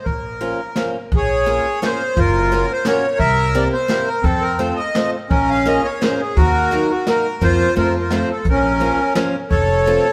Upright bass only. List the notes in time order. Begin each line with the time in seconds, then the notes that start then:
0.06 A#1
1.12 A#1
2.17 F#1
3.19 C2
4.24 F2
5.31 A#1
6.37 D#2
7.42 F2
7.77 F2
8.45 A#1
9.50 F1